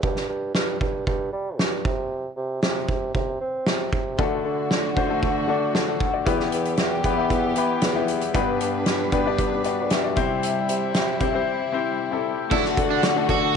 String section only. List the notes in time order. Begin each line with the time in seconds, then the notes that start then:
4.19 D3 A3 F#4
6.25 E3 B3 G4
8.36 G3 D4 B4
10.15 C3 E4
12.52 D3 A3 F#4